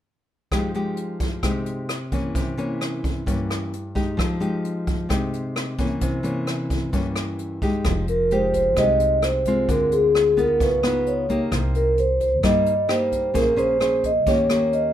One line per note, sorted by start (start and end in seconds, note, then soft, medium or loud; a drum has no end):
0.52 1.42 F3 medium
0.52 0.71 G#3 soft
0.52 0.71 D#4 soft
0.52 0.72 G4 medium
0.52 kick soft
0.52 cross-stick soft
0.52 closed hi-hat soft
0.74 1.40 G#3 soft
0.74 1.40 D#4 soft
0.74 1.40 G4 medium
0.74 closed hi-hat soft
0.97 closed hi-hat soft
1.20 kick soft
1.20 closed hi-hat soft
1.43 2.33 C3 medium
1.43 1.89 G#3 soft
1.43 1.89 D#4 soft
1.43 1.89 G4 soft
1.43 kick soft
1.43 cross-stick medium
1.43 closed hi-hat soft
1.66 closed hi-hat soft
1.89 cross-stick medium
1.89 closed hi-hat soft
2.12 2.54 E3 medium
2.12 2.55 A#3 medium
2.12 2.55 C#4 medium
2.12 kick soft
2.12 closed hi-hat soft
2.35 3.25 C3 medium
2.35 kick soft
2.35 closed hi-hat soft
2.57 3.23 E3 medium
2.57 3.23 A#3 medium
2.57 3.23 C#4 medium
2.57 closed hi-hat soft
2.81 cross-stick soft
2.81 closed hi-hat soft
3.04 kick soft
3.04 closed hi-hat soft
3.26 4.16 G2 medium
3.26 3.72 E3 soft
3.26 3.72 A#3 soft
3.26 3.73 C#4 soft
3.26 kick soft
3.26 closed hi-hat soft
3.51 cross-stick medium
3.51 closed hi-hat soft
3.73 closed hi-hat soft
3.95 4.38 G#3 medium
3.95 4.38 D#4 medium
3.95 4.38 G4 medium
3.95 kick soft
3.95 closed hi-hat soft
4.17 5.07 F3 medium
4.17 kick medium
4.17 cross-stick medium
4.17 closed hi-hat soft
4.40 5.06 G#3 medium
4.40 5.06 D#4 medium
4.40 5.07 G4 medium
4.40 closed hi-hat soft
4.65 closed hi-hat soft
4.87 kick soft
4.87 closed hi-hat soft
5.09 5.99 C3 medium
5.09 5.75 G#3 soft
5.09 5.75 D#4 soft
5.09 5.75 G4 medium
5.09 kick medium
5.09 cross-stick soft
5.09 closed hi-hat soft
5.33 closed hi-hat soft
5.56 cross-stick medium
5.56 closed hi-hat soft
5.78 6.21 E3 medium
5.78 6.21 A#3 soft
5.78 6.21 C#4 medium
5.78 kick soft
5.78 closed hi-hat soft
6.01 6.91 C3 medium
6.01 kick medium
6.01 closed hi-hat medium
6.23 6.89 E3 medium
6.23 6.90 A#3 medium
6.23 6.90 C#4 medium
6.23 closed hi-hat soft
6.47 cross-stick soft
6.47 closed hi-hat soft
6.70 kick soft
6.70 closed hi-hat soft
6.93 7.83 G2 medium
6.93 7.59 E3 soft
6.93 7.59 A#3 soft
6.93 7.59 C#4 medium
6.93 kick medium
6.93 closed hi-hat soft
7.16 cross-stick medium
7.16 closed hi-hat soft
7.39 closed hi-hat soft
7.62 8.05 G#3 medium
7.62 8.05 D#4 medium
7.62 8.05 G4 medium
7.62 kick soft
7.62 closed hi-hat soft
7.84 8.77 F1 medium
7.84 8.74 F3 medium
7.84 kick medium
7.84 cross-stick soft
7.84 closed hi-hat soft
8.08 8.30 A#4 medium
8.08 closed hi-hat soft
8.31 8.74 G#3 medium
8.31 8.74 D#4 soft
8.31 8.74 G4 medium
8.31 8.54 C5 medium
8.31 closed hi-hat soft
8.54 8.78 C5 medium
8.54 kick soft
8.54 closed hi-hat soft
8.76 9.65 C2 medium
8.76 9.67 C3 soft
8.76 9.42 G#3 soft
8.76 9.43 D#4 soft
8.76 9.43 G4 medium
8.76 9.20 D#5 medium
8.76 kick soft
8.76 cross-stick soft
8.76 closed hi-hat soft
9.00 closed hi-hat soft
9.22 9.66 C5 medium
9.22 cross-stick medium
9.22 closed hi-hat soft
9.45 10.35 G#3 soft
9.45 10.35 C4 medium
9.45 10.35 F4 medium
9.45 kick soft
9.45 closed hi-hat soft
9.69 10.60 D2 medium
9.69 10.58 D3 soft
9.69 9.93 A#4 medium
9.69 kick medium
9.69 closed hi-hat medium
9.92 10.35 G#4 medium
9.92 closed hi-hat soft
10.15 cross-stick soft
10.15 closed hi-hat soft
10.37 10.79 B3 medium
10.37 10.80 D#4 medium
10.37 10.80 F4 medium
10.37 10.62 A#4 medium
10.37 kick soft
10.37 closed hi-hat soft
10.60 11.48 C#2 medium
10.60 11.50 C#3 soft
10.60 11.09 B4 medium
10.60 kick medium
10.60 closed hi-hat soft
10.83 11.25 B3 medium
10.83 11.26 D#4 medium
10.83 11.26 F4 medium
10.83 cross-stick medium
10.83 closed hi-hat soft
11.06 11.39 C#5 medium
11.06 closed hi-hat soft
11.29 11.94 A#3 medium
11.29 11.95 D#4 medium
11.29 11.95 G4 medium
11.29 kick soft
11.29 closed hi-hat soft
11.52 12.43 C2 medium
11.52 12.41 C3 medium
11.52 kick medium
11.52 cross-stick soft
11.52 closed hi-hat soft
11.75 11.99 A#4 medium
11.75 closed hi-hat soft
11.98 12.20 C5 medium
11.98 closed hi-hat soft
12.20 12.32 C5 medium
12.20 kick soft
12.20 closed hi-hat soft
12.43 13.31 G2 medium
12.43 13.33 G3 soft
12.43 12.73 A#3 soft
12.43 12.73 D#4 soft
12.43 12.73 G4 medium
12.43 12.91 D#5 medium
12.43 kick medium
12.43 cross-stick medium
12.43 closed hi-hat medium
12.66 closed hi-hat soft
12.88 13.33 A#3 soft
12.88 13.33 D#4 soft
12.88 13.33 G4 medium
12.88 13.37 C5 medium
12.88 cross-stick medium
12.88 closed hi-hat soft
13.12 kick soft
13.12 closed hi-hat soft
13.34 14.26 A#1 medium
13.34 14.24 A#3 medium
13.34 13.54 C#4 soft
13.34 13.54 G#4 medium
13.34 13.57 A#4 medium
13.34 13.54 C5 medium
13.34 kick soft
13.34 closed hi-hat medium
13.56 13.77 C#4 medium
13.56 13.77 G#4 medium
13.56 13.77 C5 medium
13.56 14.01 C5 medium
13.56 closed hi-hat soft
13.80 14.10 C#4 soft
13.80 14.10 G#4 soft
13.80 14.11 C5 medium
13.80 cross-stick medium
13.80 closed hi-hat soft
14.04 14.29 D#5 medium
14.04 kick soft
14.04 closed hi-hat soft
14.26 14.93 D#2 medium
14.26 14.93 D#3 soft
14.26 14.46 A#3 soft
14.26 14.46 C#4 soft
14.26 14.47 G4 medium
14.26 14.75 C#5 medium
14.26 kick medium
14.26 closed hi-hat soft
14.50 14.93 A#3 soft
14.50 14.93 C#4 medium
14.50 14.93 G4 medium
14.50 cross-stick medium
14.50 closed hi-hat soft
14.73 14.93 D#5 medium
14.73 closed hi-hat soft